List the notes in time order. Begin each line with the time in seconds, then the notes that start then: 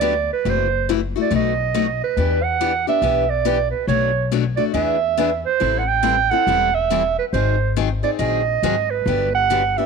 Already playing: D2 D5
0.01 D3 F#3 B3 D4 G4
0.33 B4
0.45 F#1 C3 E3 A3 E4 F#4
0.50 C5
0.89 C3 E3 A3 E4 F#4
1.16 A3 E4 F#4
1.21 D5
1.31 B1 B2 F#3 A3 D#4 F#4
1.36 D#5
1.74 B2 F#3 A3 D#4 F#4
2.04 B4
2.17 E2 E3 B3 D4 G4
2.44 F#5
2.61 E3 B3 D4 G4
2.87 B3 D4 G4 E5
3.02 B1 E3 B3 D4 G4
3.30 D5
3.45 E3 B3 D4 G4
3.71 B4
3.87 B1 B2 F#3 A3 D4 F#4 C#5
4.32 B2 F#3 A3 D4 F#4
4.57 A3 D4 F#4 D5
4.74 E2 E3 B3 D4 G#4 E5
5.17 E3 B3 D4 G#4
5.46 C5
5.60 A1 E3 G3 C4 E4 A4
5.79 F#5
5.88 G5
6.03 E3 G3 C4 E4 A4
6.31 C4 E4 A4 F#5
6.47 E1 E3 G3 C4 E4 A4
6.75 E5
6.90 E3 G3 C4 E4 A4
7.19 B4
7.33 G#1 D#3 F#3 C4 D#4 G#4 C5
7.76 D#3 F#3 C4 D#4 G#4
8.03 C4 D#4 G#4 D5
8.19 A#1 D#3 F#3 C4 D#4 G#4 D#5
8.63 G#1 D#3 F#3 C4 D#4 G#4
8.91 B4
9.06 G1 D3 F#3 B3 D4 G4
9.35 F#5
9.50 D3 F#3 B3 D4 G4
9.78 B3 D4 G4 E5